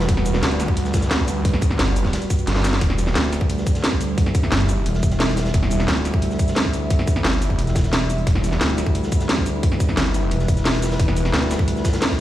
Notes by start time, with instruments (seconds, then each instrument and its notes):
Already playing: ambient pad G3 F#4 B4
0.00 closed hi-hat
0.09 detuned saw bass E1, kick, closed hi-hat
0.17 snare
0.26 closed hi-hat, shaker
0.34 snare
0.42 detuned saw bass D2, snare, closed hi-hat
0.51 closed hi-hat
0.60 snare, closed hi-hat, shaker
0.68 kick
0.77 closed hi-hat
0.85 snare, shaker
0.93 kick, snare, closed hi-hat, shaker
1.02 snare, closed hi-hat, shaker
1.11 snare, closed hi-hat
1.19 kick
1.28 closed hi-hat, shaker
1.45 kick, closed hi-hat
1.53 snare
1.62 kick, closed hi-hat, shaker
1.71 snare
1.79 detuned saw bass G1, snare, closed hi-hat
1.88 closed hi-hat
1.96 closed hi-hat, shaker
2.05 kick, snare
2.13 snare, closed hi-hat
2.22 closed hi-hat, shaker
2.30 kick, closed hi-hat, shaker
2.39 closed hi-hat, shaker
2.47 detuned saw bass G1, snare, closed hi-hat
2.56 snare
2.64 snare, closed hi-hat, shaker
2.73 snare, closed hi-hat
2.81 detuned saw bass E1, ambient pad E4 E5, kick, closed hi-hat
2.90 snare
2.98 closed hi-hat, shaker
3.07 snare
3.15 fm bass D2, snare, closed hi-hat
3.24 closed hi-hat
3.33 snare, closed hi-hat, shaker
3.41 kick
3.50 closed hi-hat
3.58 snare, shaker
3.66 kick, closed hi-hat, shaker
3.75 snare, closed hi-hat, shaker
3.84 snare, closed hi-hat
3.92 kick
4.00 closed hi-hat, shaker
4.18 kick, closed hi-hat
4.26 snare
4.35 kick, closed hi-hat, shaker
4.43 snare
4.52 detuned saw bass G1, snare, closed hi-hat
4.60 closed hi-hat
4.69 closed hi-hat, shaker
4.86 fm bass E1, closed hi-hat
4.94 snare, shaker
5.03 kick, closed hi-hat, shaker
5.11 snare, closed hi-hat, shaker
5.19 snare, closed hi-hat
5.28 snare, closed hi-hat
5.37 snare, closed hi-hat, shaker
5.45 snare, closed hi-hat
5.54 detuned saw bass E1, kick, closed hi-hat
5.63 snare
5.71 closed hi-hat, shaker
5.79 snare
5.88 fm bass D2, snare, closed hi-hat
5.97 closed hi-hat
6.05 snare, closed hi-hat, shaker
6.14 kick
6.22 closed hi-hat
6.31 snare, shaker
6.39 kick, closed hi-hat, shaker
6.48 snare, closed hi-hat, shaker
6.56 snare, closed hi-hat
6.65 kick
6.73 closed hi-hat, shaker
6.90 kick, closed hi-hat
6.99 snare
7.07 kick, closed hi-hat, shaker
7.16 snare
7.24 detuned saw bass G1, snare, closed hi-hat
7.33 closed hi-hat
7.42 closed hi-hat, shaker
7.50 kick
7.59 fm bass E1, closed hi-hat
7.67 snare, closed hi-hat, shaker
7.75 kick, snare, closed hi-hat, shaker
7.84 snare, closed hi-hat, shaker
7.92 snare, closed hi-hat
8.10 closed hi-hat, shaker
8.18 closed hi-hat
8.27 detuned saw bass E1, ambient pad B4, kick, closed hi-hat
8.35 snare
8.44 closed hi-hat, shaker
8.51 snare
8.61 fm bass D2, snare, closed hi-hat
8.69 closed hi-hat
8.78 snare, closed hi-hat, shaker
8.86 kick
8.95 closed hi-hat
9.03 snare, shaker
9.12 kick, closed hi-hat, shaker
9.20 snare, closed hi-hat, shaker
9.29 snare, closed hi-hat
9.38 kick
9.46 closed hi-hat, shaker
9.63 kick, closed hi-hat
9.72 snare
9.80 kick, closed hi-hat, shaker
9.89 snare
9.97 detuned saw bass G1, snare, closed hi-hat
10.06 closed hi-hat
10.14 closed hi-hat, shaker
10.31 fm bass E1, closed hi-hat
10.40 snare, shaker
10.48 kick, closed hi-hat, shaker
10.57 snare, closed hi-hat, shaker
10.65 snare, closed hi-hat
10.73 snare, closed hi-hat
10.82 snare, closed hi-hat, shaker
10.92 snare, closed hi-hat
10.99 detuned saw bass E1, kick, closed hi-hat
11.08 snare
11.17 closed hi-hat, shaker
11.24 snare
11.33 fm bass D2, snare, closed hi-hat
11.42 closed hi-hat
11.51 snare, closed hi-hat, shaker
11.59 kick
11.68 closed hi-hat
11.76 snare, shaker
11.85 kick, snare, closed hi-hat, shaker
11.93 snare, closed hi-hat, shaker
12.01 snare, closed hi-hat
12.10 kick, snare, closed hi-hat